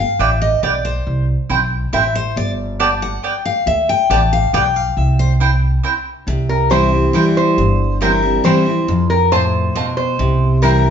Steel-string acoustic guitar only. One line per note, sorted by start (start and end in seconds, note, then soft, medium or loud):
0.00 0.20 F5 medium
0.20 0.41 E5 loud
0.42 0.63 D#5 loud
0.63 0.84 D5 medium
0.85 1.25 C5 medium
1.93 2.15 E5 loud
2.15 2.36 C5 loud
2.37 2.50 D5 loud
2.80 3.02 A5 medium
3.02 3.24 F#5 medium
3.24 3.45 G5 loud
3.45 3.66 F5 medium
3.67 3.88 E5 medium
3.89 4.10 G5 loud
4.11 4.32 A5 loud
4.33 4.53 F5 loud
4.54 4.76 G5 loud
4.76 4.97 F5 medium
4.97 5.19 E5 medium
5.19 5.32 C5 medium
6.28 7.10 C3 medium
6.70 6.92 E3 medium
6.70 6.92 G3 medium
6.70 6.92 C4 medium
6.70 6.91 E4 loud
6.92 7.14 C4 soft
6.92 7.13 E4 medium
7.13 7.55 E3 medium
7.13 7.56 G3 medium
7.13 7.56 C4 medium
7.13 7.56 E4 medium
7.58 8.41 G2 medium
8.01 8.22 E3 medium
8.01 8.23 G3 medium
8.01 8.23 C4 medium
8.01 8.21 E4 medium
8.22 8.44 C4 soft
8.22 8.44 E4 medium
8.44 8.66 E3 medium
8.44 8.66 G3 medium
8.44 8.66 C4 loud
8.44 8.65 E4 medium
8.66 8.88 C4 soft
8.66 8.87 E4 medium
8.88 9.71 F2 medium
9.32 9.73 A2 medium
9.75 10.17 B2 medium
10.19 10.90 C3 medium
10.62 10.83 E3 medium
10.62 10.84 G3 medium
10.62 10.84 C4 medium
10.62 10.83 E4 loud
10.84 10.90 C4 soft
10.84 10.90 E4 medium